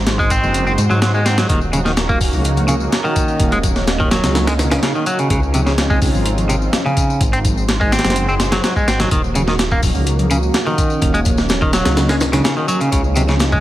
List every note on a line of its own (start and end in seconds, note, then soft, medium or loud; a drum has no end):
0.00 0.38 G#1 loud
0.00 1.48 G#3 medium
0.00 9.08 D#4 medium
0.00 5.27 F#4 medium
0.00 1.48 C5 medium
0.07 snare loud
0.07 closed hi-hat medium
0.07 tambourine soft
0.19 0.30 G#3 medium
0.19 kick medium
0.19 tambourine soft
0.30 0.66 C4 loud
0.30 kick medium
0.30 closed hi-hat medium
0.30 tambourine medium
0.43 0.78 F#1 medium
0.43 tambourine soft
0.43 high conga medium
0.43 low conga medium
0.54 closed hi-hat medium
0.54 tambourine soft
0.67 0.72 C4 medium
0.67 tambourine soft
0.78 0.88 G#2 loud
0.78 closed hi-hat medium
0.78 tambourine medium
0.78 low conga medium
0.90 1.45 G#2 loud
0.90 0.99 F#3 loud
0.90 tambourine soft
1.02 1.11 F#3 medium
1.02 snare loud
1.02 closed hi-hat medium
1.02 tambourine soft
1.14 1.25 G#3 medium
1.14 tambourine soft
1.26 1.37 C4 loud
1.26 snare loud
1.26 closed hi-hat medium
1.26 tambourine medium
1.38 1.47 F#3 medium
1.38 snare loud
1.38 closed hi-hat medium
1.38 tambourine soft
1.49 2.29 D#1 loud
1.49 1.58 D#3 medium
1.49 5.27 A#3 medium
1.49 7.17 C#4 medium
1.49 kick loud
1.49 closed hi-hat medium
1.49 tambourine soft
1.61 tambourine soft
1.73 1.79 C#3 medium
1.73 closed hi-hat medium
1.73 tambourine medium
1.73 high conga medium
1.85 1.91 D#3 medium
1.85 snare medium
1.85 tambourine soft
1.97 snare loud
1.97 closed hi-hat medium
1.97 tambourine soft
2.09 2.18 A#3 medium
2.09 kick medium
2.09 tambourine soft
2.21 kick medium
2.21 open hi-hat medium
2.21 tambourine medium
2.33 2.88 C#2 medium
2.33 tambourine soft
2.33 high conga medium
2.33 low conga medium
2.44 closed hi-hat medium
2.44 tambourine soft
2.57 closed hi-hat soft
2.57 tambourine soft
2.57 high conga medium
2.68 2.74 C#3 medium
2.68 closed hi-hat medium
2.68 tambourine medium
2.80 tambourine soft
2.92 snare loud
2.92 closed hi-hat medium
2.92 tambourine soft
2.92 high conga medium
3.05 3.51 D#3 medium
3.05 tambourine soft
3.16 kick medium
3.16 closed hi-hat medium
3.16 tambourine medium
3.28 tambourine soft
3.40 4.19 D#1 loud
3.40 kick loud
3.40 closed hi-hat medium
3.40 tambourine soft
3.52 3.57 G#3 loud
3.52 closed hi-hat soft
3.52 tambourine soft
3.63 kick medium
3.63 closed hi-hat medium
3.63 tambourine medium
3.63 high conga medium
3.76 snare medium
3.76 tambourine soft
3.87 snare loud
3.87 closed hi-hat medium
3.87 tambourine soft
4.00 4.11 D#3 medium
4.00 kick medium
4.00 tambourine soft
4.11 4.46 F#3 medium
4.11 snare loud
4.11 closed hi-hat medium
4.11 tambourine medium
4.23 4.78 C#2 medium
4.23 snare loud
4.23 closed hi-hat medium
4.23 tambourine soft
4.23 high conga medium
4.23 low conga medium
4.35 snare loud
4.35 closed hi-hat medium
4.35 tambourine soft
4.47 4.53 G#3 medium
4.47 snare loud
4.47 closed hi-hat medium
4.47 tambourine soft
4.59 snare loud
4.59 closed hi-hat medium
4.59 tambourine medium
4.59 low conga medium
4.71 4.80 C#3 loud
4.71 snare loud
4.71 closed hi-hat medium
4.71 tambourine soft
4.83 4.92 C#3 medium
4.83 snare loud
4.83 closed hi-hat medium
4.83 tambourine soft
4.95 5.06 D#3 medium
4.95 tambourine soft
5.06 5.18 F#3 loud
5.06 closed hi-hat medium
5.06 tambourine medium
5.19 5.28 C#3 medium
5.19 closed hi-hat soft
5.19 tambourine soft
5.30 6.09 C#2 loud
5.30 5.40 C#3 medium
5.30 7.19 C4 medium
5.30 7.19 F4 medium
5.30 kick loud
5.30 closed hi-hat medium
5.30 tambourine soft
5.43 tambourine soft
5.54 5.60 C3 medium
5.54 closed hi-hat medium
5.54 tambourine medium
5.54 high conga medium
5.66 5.72 C#3 medium
5.66 snare medium
5.66 tambourine soft
5.78 snare loud
5.78 closed hi-hat medium
5.78 tambourine soft
5.90 5.99 G#3 medium
5.90 kick medium
5.90 tambourine soft
6.02 kick medium
6.02 open hi-hat medium
6.02 tambourine medium
6.14 6.69 G#1 medium
6.14 tambourine soft
6.14 high conga medium
6.14 low conga medium
6.25 closed hi-hat medium
6.25 tambourine soft
6.38 closed hi-hat soft
6.38 tambourine soft
6.38 high conga medium
6.49 6.55 C3 medium
6.49 closed hi-hat medium
6.49 tambourine medium
6.62 tambourine soft
6.73 snare loud
6.73 closed hi-hat medium
6.73 tambourine soft
6.73 high conga medium
6.86 7.21 C#3 medium
6.86 tambourine soft
6.97 kick medium
6.97 closed hi-hat medium
6.97 tambourine medium
7.10 tambourine soft
7.21 8.00 G#1 loud
7.21 9.09 G#3 medium
7.21 12.88 F#4 medium
7.21 9.09 C5 medium
7.21 kick loud
7.21 closed hi-hat medium
7.21 tambourine soft
7.33 7.38 C4 medium
7.33 closed hi-hat soft
7.33 tambourine soft
7.45 kick medium
7.45 closed hi-hat medium
7.45 tambourine medium
7.45 high conga medium
7.57 tambourine soft
7.69 snare loud
7.69 closed hi-hat medium
7.69 tambourine soft
7.81 7.92 G#3 medium
7.81 kick medium
7.81 tambourine soft
7.92 8.27 C4 loud
7.92 snare medium
7.92 closed hi-hat medium
7.92 tambourine medium
7.99 snare medium
7.99 closed hi-hat medium
8.04 8.59 F#1 medium
8.04 snare medium
8.04 closed hi-hat medium
8.04 tambourine soft
8.04 high conga soft
8.04 low conga medium
8.10 snare medium
8.10 closed hi-hat medium
8.16 closed hi-hat medium
8.16 tambourine soft
8.29 8.34 C4 medium
8.29 tambourine soft
8.40 snare loud
8.40 closed hi-hat medium
8.40 tambourine medium
8.40 low conga medium
8.52 8.61 F#3 loud
8.52 snare loud
8.52 closed hi-hat medium
8.52 tambourine soft
8.64 8.73 F#3 medium
8.64 snare loud
8.64 closed hi-hat medium
8.64 tambourine soft
8.76 8.87 G#3 medium
8.76 kick medium
8.76 tambourine soft
8.87 9.06 G#1 medium
8.87 8.99 C4 loud
8.87 snare loud
8.87 closed hi-hat medium
8.87 tambourine medium
9.00 9.09 F#3 medium
9.00 snare loud
9.00 closed hi-hat medium
9.00 tambourine soft
9.00 low conga medium
9.11 9.90 D#1 loud
9.11 9.21 D#3 medium
9.11 12.89 A#3 medium
9.11 13.60 C#4 medium
9.11 13.60 D#4 medium
9.11 kick loud
9.11 closed hi-hat medium
9.11 tambourine soft
9.24 tambourine soft
9.35 9.41 C#3 medium
9.35 closed hi-hat medium
9.35 tambourine medium
9.35 muted conga medium
9.35 high conga medium
9.47 9.53 D#3 medium
9.47 snare medium
9.47 tambourine soft
9.59 snare loud
9.59 closed hi-hat medium
9.59 tambourine soft
9.71 9.80 A#3 medium
9.71 kick medium
9.71 tambourine soft
9.82 kick medium
9.82 open hi-hat medium
9.82 tambourine medium
9.82 muted conga medium
9.95 10.50 C#2 medium
9.95 tambourine soft
9.95 high conga medium
9.95 low conga medium
10.06 closed hi-hat medium
10.06 tambourine soft
10.19 closed hi-hat soft
10.19 tambourine soft
10.19 muted conga medium
10.19 high conga medium
10.30 10.36 C#3 medium
10.30 closed hi-hat medium
10.30 tambourine medium
10.43 tambourine soft
10.54 snare loud
10.54 closed hi-hat medium
10.54 tambourine soft
10.54 high conga medium
10.66 11.13 D#3 medium
10.66 tambourine soft
10.66 muted conga medium
10.78 kick medium
10.78 closed hi-hat medium
10.78 tambourine medium
10.90 tambourine soft
11.02 11.81 D#1 loud
11.02 kick loud
11.02 closed hi-hat medium
11.02 tambourine soft
11.02 muted conga soft
11.14 11.19 G#3 loud
11.14 closed hi-hat soft
11.14 tambourine soft
11.25 kick medium
11.25 closed hi-hat medium
11.25 tambourine medium
11.25 high conga medium
11.37 snare medium
11.37 tambourine soft
11.49 snare loud
11.49 closed hi-hat medium
11.49 tambourine soft
11.49 muted conga medium
11.61 11.73 D#3 medium
11.61 kick medium
11.61 tambourine soft
11.73 12.08 F#3 loud
11.73 snare loud
11.73 closed hi-hat medium
11.73 tambourine medium
11.85 12.40 C#2 medium
11.85 snare loud
11.85 closed hi-hat medium
11.85 tambourine soft
11.85 muted conga medium
11.85 high conga medium
11.85 low conga medium
11.97 snare loud
11.97 closed hi-hat medium
11.97 tambourine soft
12.09 12.15 G#3 loud
12.09 snare loud
12.09 closed hi-hat medium
12.09 tambourine soft
12.20 snare loud
12.20 closed hi-hat medium
12.20 tambourine medium
12.20 low conga medium
12.33 12.42 C#3 loud
12.33 snare loud
12.33 closed hi-hat medium
12.33 tambourine soft
12.33 muted conga medium
12.44 12.54 C#3 medium
12.44 snare loud
12.44 closed hi-hat medium
12.44 tambourine soft
12.57 12.68 D#3 medium
12.57 tambourine soft
12.68 12.79 F#3 loud
12.68 closed hi-hat medium
12.68 tambourine medium
12.68 muted conga medium
12.81 12.89 C#3 loud
12.81 closed hi-hat soft
12.81 tambourine soft
12.92 13.60 C#2 loud
12.92 13.01 C#3 medium
12.92 13.60 C4 medium
12.92 13.60 F4 medium
12.92 kick loud
12.92 closed hi-hat medium
12.92 tambourine soft
13.04 tambourine soft
13.15 13.21 C3 medium
13.15 closed hi-hat medium
13.15 tambourine medium
13.15 muted conga medium
13.15 high conga medium
13.28 13.34 C#3 medium
13.28 snare medium
13.28 tambourine soft
13.39 snare loud
13.39 closed hi-hat medium
13.39 tambourine soft
13.52 13.60 G#3 medium
13.52 kick medium
13.52 tambourine soft
13.52 muted conga medium